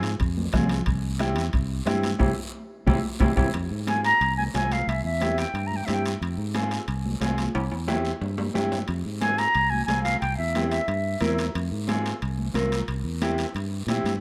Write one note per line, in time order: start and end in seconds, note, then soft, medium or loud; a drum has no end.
0.00 0.17 G#2 medium
0.00 0.10 F4 medium
0.00 0.10 G#4 medium
0.00 high timbale medium
0.04 short guiro medium
0.20 0.47 F2 medium
0.20 bombo low medium
0.20 high conga soft
0.20 high timbale medium
0.20 long guiro medium
0.37 high conga medium
0.53 0.80 C2 medium
0.53 0.77 C4 medium
0.53 0.77 F4 medium
0.53 0.77 G#4 medium
0.53 bombo low medium
0.53 bombo rim medium
0.53 high conga medium
0.53 low conga medium
0.53 high timbale medium
0.53 short guiro medium
0.69 high timbale medium
0.69 short guiro medium
0.86 1.37 C2 loud
0.86 bombo low medium
0.86 high timbale medium
0.86 long guiro medium
1.04 high conga soft
1.19 1.43 C4 medium
1.19 1.43 E4 medium
1.19 1.44 G4 medium
1.19 bombo rim medium
1.19 high conga medium
1.19 high timbale medium
1.19 short guiro medium
1.36 1.51 E2 medium
1.36 high timbale medium
1.36 short guiro medium
1.53 1.80 C2 medium
1.53 bombo low medium
1.53 high conga soft
1.53 high timbale medium
1.53 long guiro medium
1.85 2.13 G2 medium
1.85 2.10 C4 medium
1.85 2.10 E4 medium
1.85 2.10 G4 medium
1.85 bombo rim medium
1.85 high conga medium
1.85 high timbale medium
1.85 short guiro medium
2.03 high conga medium
2.03 high timbale medium
2.03 short guiro medium
2.19 2.33 C2 medium
2.19 2.30 C4 medium
2.19 2.30 E4 medium
2.19 2.30 G4 medium
2.19 bombo low medium
2.19 high conga medium
2.19 high timbale loud
2.19 long guiro medium
2.86 2.99 C2 medium
2.86 2.98 C4 medium
2.86 2.98 E4 medium
2.86 2.98 G4 medium
2.86 bombo low loud
2.86 high conga loud
2.86 high timbale medium
2.86 long guiro medium
3.20 3.33 C2 medium
3.20 3.31 C4 medium
3.20 3.31 E4 medium
3.20 3.31 G4 medium
3.20 bombo low medium
3.20 high conga loud
3.20 high timbale loud
3.36 3.50 C2 medium
3.36 3.47 C4 medium
3.36 3.47 E4 medium
3.36 3.48 G4 medium
3.36 bombo low medium
3.36 high conga loud
3.36 high timbale medium
3.36 long guiro loud
3.54 3.67 F2 medium
3.54 high timbale medium
3.54 long guiro medium
3.71 4.11 G#2 medium
3.71 high conga soft
3.87 4.11 C4 medium
3.87 4.11 F4 medium
3.87 4.11 G#4 medium
3.87 4.03 G#5 medium
3.87 high conga medium
3.87 high timbale medium
3.87 short guiro medium
4.04 4.35 A#5 loud
4.04 high timbale medium
4.04 short guiro medium
4.21 4.48 C2 medium
4.21 high conga soft
4.21 high timbale medium
4.21 long guiro medium
4.37 4.43 G#5 medium
4.37 high conga medium
4.54 4.81 C2 medium
4.54 4.78 C4 medium
4.54 4.78 F4 medium
4.54 4.78 G#4 medium
4.54 4.74 G#5 medium
4.54 high conga medium
4.54 high timbale medium
4.54 low timbale medium
4.54 short guiro medium
4.72 4.90 F5 medium
4.72 high conga medium
4.72 high timbale medium
4.72 short guiro medium
4.87 5.01 C2 loud
4.87 5.04 E5 medium
4.87 high timbale medium
4.87 long guiro medium
5.04 5.44 E2 medium
5.04 5.40 E5 medium
5.04 high conga soft
5.21 5.44 C4 medium
5.21 5.45 E4 medium
5.21 5.45 G4 medium
5.21 high conga medium
5.21 high timbale medium
5.21 short guiro medium
5.38 5.68 G5 medium
5.38 high timbale medium
5.38 short guiro medium
5.54 5.81 G2 medium
5.54 high conga soft
5.54 high timbale medium
5.54 long guiro medium
5.67 5.78 A#5 medium
5.72 high conga medium
5.76 5.87 G5 medium
5.85 6.15 G2 medium
5.85 6.11 C4 medium
5.85 6.11 E4 medium
5.85 6.12 G4 medium
5.85 5.95 E5 medium
5.85 high conga medium
5.85 high timbale medium
5.85 low timbale medium
5.85 short guiro medium
5.94 6.04 G5 medium
6.05 high timbale medium
6.05 short guiro medium
6.21 6.35 F2 medium
6.21 high timbale medium
6.21 long guiro medium
6.37 6.78 G#2 medium
6.37 high conga soft
6.54 6.78 C4 medium
6.54 6.78 F4 medium
6.54 6.78 G#4 medium
6.54 high conga medium
6.54 high timbale medium
6.54 short guiro medium
6.71 high timbale medium
6.71 short guiro medium
6.88 7.15 C2 medium
6.88 high conga soft
6.88 high timbale medium
6.88 long guiro medium
7.06 high conga medium
7.21 7.48 C2 medium
7.21 7.44 C4 medium
7.21 7.45 F4 medium
7.21 7.45 G#4 medium
7.21 high conga medium
7.21 high timbale medium
7.21 low timbale medium
7.21 short guiro medium
7.38 high conga medium
7.38 high timbale medium
7.38 short guiro medium
7.55 7.69 C2 medium
7.55 high timbale loud
7.55 long guiro medium
7.72 8.12 E2 medium
7.72 high conga soft
7.72 high timbale medium
7.87 8.11 C4 medium
7.87 8.11 E4 medium
7.87 8.12 G4 loud
7.87 high conga medium
7.87 low timbale medium
7.87 short guiro medium
8.05 short guiro medium
8.21 8.48 G2 medium
8.21 high conga soft
8.21 low timbale medium
8.21 long guiro medium
8.38 high conga medium
8.38 low timbale medium
8.54 8.82 G2 medium
8.54 8.78 C4 medium
8.54 8.78 E4 medium
8.54 8.78 G4 medium
8.54 high conga medium
8.54 low timbale medium
8.54 short guiro medium
8.72 high conga medium
8.72 low timbale medium
8.72 short guiro medium
8.88 9.02 F2 medium
8.88 high timbale medium
8.88 long guiro medium
9.05 9.45 G#2 medium
9.05 high conga soft
9.21 9.45 C4 medium
9.21 9.45 F4 medium
9.21 9.45 G#4 medium
9.21 9.40 G#5 medium
9.21 high conga medium
9.21 high timbale medium
9.21 short guiro medium
9.38 9.72 A#5 loud
9.38 high timbale medium
9.38 short guiro medium
9.55 9.82 C2 medium
9.55 high conga soft
9.55 high timbale medium
9.55 long guiro medium
9.70 9.85 G#5 medium
9.70 high conga medium
9.85 10.15 C2 medium
9.85 10.12 C4 medium
9.85 10.12 F4 medium
9.85 10.02 G#5 medium
9.85 high conga medium
9.85 high timbale medium
9.85 low timbale medium
9.85 short guiro medium
9.90 10.13 G#4 medium
10.03 10.20 F5 medium
10.03 high conga medium
10.03 high timbale medium
10.03 short guiro medium
10.21 10.35 C2 medium
10.21 10.37 G5 medium
10.21 high timbale medium
10.21 long guiro medium
10.37 10.79 E2 medium
10.37 10.69 E5 medium
10.37 high conga soft
10.55 10.79 C4 medium
10.55 10.79 E4 medium
10.55 10.79 G4 medium
10.55 high conga medium
10.55 high timbale medium
10.55 short guiro medium
10.71 11.34 E5 medium
10.71 high timbale medium
10.71 short guiro medium
10.88 11.15 G2 medium
10.88 high conga soft
10.88 high timbale medium
10.88 long guiro medium
11.20 11.48 E2 medium
11.20 11.45 C4 medium
11.20 11.45 E4 medium
11.20 11.45 A#4 medium
11.20 high conga medium
11.20 high timbale medium
11.20 short guiro medium
11.38 high conga medium
11.38 high timbale medium
11.38 short guiro medium
11.55 11.69 F2 loud
11.55 high timbale medium
11.55 long guiro medium
11.71 12.12 G#2 medium
11.71 high conga soft
11.88 12.12 C4 medium
11.88 12.12 F4 medium
11.88 12.12 G#4 medium
11.88 high conga medium
11.88 high timbale medium
11.88 short guiro medium
12.06 high timbale medium
12.06 short guiro medium
12.22 12.49 C2 medium
12.22 high conga soft
12.22 high timbale medium
12.22 long guiro medium
12.38 high conga medium
12.54 12.81 C2 medium
12.54 12.78 C4 medium
12.54 12.79 F4 medium
12.54 12.79 A#4 medium
12.54 high conga medium
12.54 high timbale medium
12.54 short guiro medium
12.72 high conga medium
12.72 high timbale medium
12.72 short guiro medium
12.88 13.02 C2 medium
12.88 high timbale medium
12.88 long guiro medium
13.04 13.45 E2 medium
13.04 high conga soft
13.21 13.45 C4 medium
13.21 13.45 E4 medium
13.21 13.46 G4 loud
13.21 high conga medium
13.21 high timbale medium
13.21 short guiro medium
13.38 high timbale medium
13.38 short guiro medium
13.54 13.82 G2 medium
13.54 high conga soft
13.54 high timbale medium
13.54 long guiro medium
13.87 14.03 A#2 medium
13.87 14.12 C4 medium
13.87 14.12 E4 medium
13.87 14.13 G4 medium
13.87 high conga medium
13.87 high timbale medium
13.87 low timbale medium
13.87 short guiro medium
14.04 14.20 G2 medium
14.04 high conga medium
14.04 high timbale medium
14.04 short guiro medium